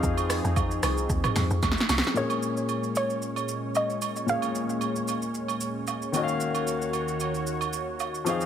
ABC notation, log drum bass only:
X:1
M:4/4
L:1/16
Q:"Swing 16ths" 1/4=113
K:Bbm
V:1 name="Log drum bass" clef=bass
F,,3 F,,3 C,,2 E,, z F,, F,, E,, z C,, z | z16 | z16 | z16 |]